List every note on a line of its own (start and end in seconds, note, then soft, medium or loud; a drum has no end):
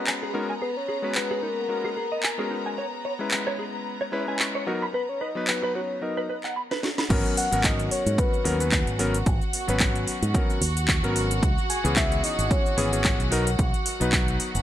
0.00 0.31 G#3 medium
0.00 0.31 B3 medium
0.00 6.56 B3 medium
0.00 0.32 C#4 medium
0.00 0.32 F#4 medium
0.00 0.31 B4 medium
0.00 0.32 B4 medium
0.00 6.56 A#5 medium
0.07 0.12 G#5 medium
0.07 clap loud
0.23 0.32 G#4 medium
0.34 0.50 G#3 medium
0.34 0.50 B3 medium
0.34 0.51 C#4 medium
0.34 0.39 D#4 medium
0.34 0.51 F#4 medium
0.34 0.51 A#4 loud
0.50 0.53 G#5 medium
0.62 0.69 G#4 medium
0.62 0.76 B4 medium
0.77 1.17 C#5 loud
0.88 0.96 G#4 medium
1.02 1.66 G#3 medium
1.02 1.66 B3 medium
1.02 1.67 C#4 medium
1.02 1.67 F#4 medium
1.02 1.67 B4 medium
1.15 1.44 B4 medium
1.15 clap loud
1.31 1.40 G#4 medium
1.43 1.47 D#4 medium
1.43 2.51 A#4 medium
1.69 1.93 G#3 medium
1.69 1.93 B3 medium
1.69 1.93 C#4 medium
1.69 1.94 F#4 medium
1.69 1.94 A#4 medium
1.85 1.88 G#4 medium
1.97 2.04 G#4 medium
2.12 2.21 D#5 medium
2.23 2.28 G#5 medium
2.23 clap loud
2.38 2.76 G#3 medium
2.38 2.76 B3 medium
2.38 2.76 C#4 medium
2.38 2.76 F#4 medium
2.38 2.48 G#4 medium
2.38 2.76 A#4 medium
2.51 2.55 D#4 medium
2.66 2.69 G#5 medium
2.78 2.85 C#5 medium
3.05 3.12 C#5 medium
3.19 4.10 G#3 medium
3.19 4.10 C#4 medium
3.19 4.10 E4 medium
3.19 4.11 B4 medium
3.31 clap loud
3.47 3.56 C#5 medium
3.59 3.63 G#4 medium
4.01 4.04 C#5 medium
4.12 4.24 G#3 medium
4.12 4.24 C#4 medium
4.12 4.24 E4 medium
4.12 4.24 B4 loud
4.12 4.20 C#5 medium
4.27 4.64 G#3 medium
4.27 4.64 C#4 medium
4.27 4.64 E4 medium
4.27 4.64 B4 medium
4.27 4.37 G#5 medium
4.39 4.45 C#6 medium
4.39 clap loud
4.55 4.64 C#5 medium
4.67 4.83 F#3 medium
4.67 4.83 B3 medium
4.67 4.83 D#4 medium
4.67 4.72 F#4 loud
4.67 4.83 A#4 loud
4.82 4.86 B5 medium
4.94 5.08 B4 medium
4.94 5.02 B4 medium
5.09 5.22 C#5 medium
5.21 5.29 B4 medium
5.21 5.49 D#5 loud
5.35 5.99 F#3 medium
5.35 5.99 B3 medium
5.35 5.99 D#4 medium
5.35 6.00 B4 medium
5.47 5.77 B4 loud
5.47 clap loud
5.64 5.72 B4 medium
5.75 5.80 F#4 medium
5.75 6.02 C#5 medium
6.01 6.26 F#3 medium
6.01 6.26 B3 medium
6.01 6.26 D#4 medium
6.01 6.26 A#4 medium
6.01 6.53 D#5 medium
6.17 6.21 B4 medium
6.29 6.37 B4 medium
6.44 6.53 F#5 medium
6.44 clap soft
6.56 6.61 B5 medium
6.71 6.80 B4 medium
6.71 snare soft
6.83 6.88 F#4 medium
6.83 snare medium
6.98 7.02 B5 medium
6.98 snare medium
7.09 7.23 G#1 medium
7.09 7.46 F#3 loud
7.09 7.46 B3 medium
7.09 7.46 C#4 medium
7.09 14.62 F#4 medium
7.09 7.46 A#4 loud
7.09 14.62 F#5 medium
7.09 kick loud
7.09 closed hi-hat medium
7.09 crash loud
7.09 shaker medium
7.26 shaker soft
7.37 7.66 F#5 loud
7.37 open hi-hat loud
7.51 7.88 G#1 medium
7.51 8.42 F#3 medium
7.51 8.42 B3 medium
7.51 8.43 C#4 medium
7.51 8.43 A#4 loud
7.51 closed hi-hat medium
7.51 shaker medium
7.64 7.91 D#5 loud
7.64 kick loud
7.64 clap loud
7.64 closed hi-hat medium
7.64 shaker medium
7.80 closed hi-hat soft
7.80 shaker soft
7.91 8.20 C#5 loud
7.91 open hi-hat medium
8.06 8.16 G#2 loud
8.06 closed hi-hat medium
8.06 shaker medium
8.18 9.00 B4 medium
8.18 kick loud
8.18 closed hi-hat medium
8.18 shaker medium
8.34 shaker soft
8.44 8.83 D#2 loud
8.44 8.56 F#3 loud
8.44 8.57 B3 medium
8.44 8.57 C#4 medium
8.44 8.57 A#4 loud
8.44 open hi-hat loud
8.60 8.96 F#3 medium
8.60 8.96 B3 medium
8.60 8.97 C#4 medium
8.60 8.97 B4 medium
8.60 closed hi-hat medium
8.60 shaker medium
8.72 kick loud
8.72 clap loud
8.72 closed hi-hat medium
8.72 shaker medium
8.87 9.23 G#1 loud
8.87 closed hi-hat soft
8.87 shaker soft
8.99 9.15 F#3 loud
8.99 9.16 B3 medium
8.99 9.16 C#4 medium
8.99 9.16 A#4 loud
8.99 open hi-hat medium
9.14 closed hi-hat medium
9.14 shaker medium
9.26 9.39 G#1 loud
9.26 kick loud
9.26 closed hi-hat medium
9.26 shaker medium
9.42 shaker soft
9.53 open hi-hat loud
9.68 10.04 G#1 medium
9.68 10.31 F#3 medium
9.68 10.31 B3 medium
9.68 10.32 C#4 medium
9.68 10.32 B4 loud
9.68 closed hi-hat medium
9.68 shaker medium
9.80 kick loud
9.80 clap loud
9.80 closed hi-hat medium
9.80 shaker medium
9.96 closed hi-hat soft
9.96 shaker soft
10.07 muted fingered electric bass stroke soft
10.07 open hi-hat medium
10.22 10.32 G#2 medium
10.22 closed hi-hat medium
10.22 shaker medium
10.34 10.58 F#3 medium
10.34 10.58 B3 medium
10.34 10.59 C#4 medium
10.34 10.59 A#4 medium
10.34 kick loud
10.34 closed hi-hat medium
10.34 shaker medium
10.50 shaker soft
10.61 10.99 D#2 loud
10.61 open hi-hat loud
10.77 closed hi-hat medium
10.77 shaker medium
10.88 kick loud
10.88 clap loud
10.88 closed hi-hat medium
10.88 shaker medium
11.03 11.39 G#1 loud
11.03 11.41 F#3 medium
11.03 11.41 B3 medium
11.03 11.41 C#4 medium
11.03 11.41 A#4 loud
11.03 closed hi-hat soft
11.03 shaker soft
11.16 open hi-hat loud
11.31 closed hi-hat medium
11.31 shaker medium
11.43 11.55 C#2 loud
11.43 kick loud
11.43 closed hi-hat medium
11.43 shaker medium
11.58 shaker soft
11.70 11.95 G#5 loud
11.70 open hi-hat loud
11.84 12.20 C#2 medium
11.84 12.74 E3 medium
11.84 12.75 B3 medium
11.84 12.75 C#4 medium
11.84 12.75 G#4 loud
11.84 closed hi-hat medium
11.84 shaker medium
11.96 12.22 E5 loud
11.96 kick loud
11.96 clap loud
11.96 closed hi-hat medium
11.96 shaker medium
12.12 closed hi-hat soft
12.12 shaker soft
12.24 12.53 D#5 loud
12.24 open hi-hat loud
12.39 12.48 G#1 medium
12.39 closed hi-hat soft
12.39 shaker medium
12.51 13.32 C#5 medium
12.51 kick loud
12.51 closed hi-hat medium
12.51 shaker medium
12.66 shaker soft
12.77 13.15 G#1 loud
12.77 12.89 E3 medium
12.77 12.89 B3 medium
12.77 12.89 C#4 medium
12.77 12.89 G#4 loud
12.77 open hi-hat loud
12.92 13.29 E3 medium
12.92 13.29 B3 medium
12.92 13.29 C#4 medium
12.92 13.29 G#4 medium
12.92 closed hi-hat medium
12.92 shaker medium
13.04 kick loud
13.04 clap loud
13.04 closed hi-hat medium
13.04 shaker medium
13.20 13.55 B1 loud
13.20 closed hi-hat soft
13.20 shaker soft
13.31 13.48 F#3 loud
13.31 13.48 B3 medium
13.31 13.48 D#4 medium
13.31 13.48 A#4 loud
13.31 open hi-hat medium
13.47 closed hi-hat medium
13.47 shaker medium
13.59 13.71 B1 loud
13.59 kick loud
13.59 closed hi-hat medium
13.59 shaker medium
13.74 closed hi-hat soft
13.74 shaker soft
13.86 open hi-hat loud
14.00 14.36 B1 medium
14.00 14.62 F#3 medium
14.00 14.62 B3 medium
14.00 14.62 D#4 medium
14.00 14.62 B4 loud
14.00 closed hi-hat soft
14.00 shaker medium
14.12 kick loud
14.12 clap loud
14.12 closed hi-hat medium
14.12 shaker medium
14.28 closed hi-hat soft
14.28 shaker soft
14.40 muted fingered electric bass stroke soft
14.40 open hi-hat medium
14.55 14.62 F#1 medium
14.55 closed hi-hat soft
14.55 shaker medium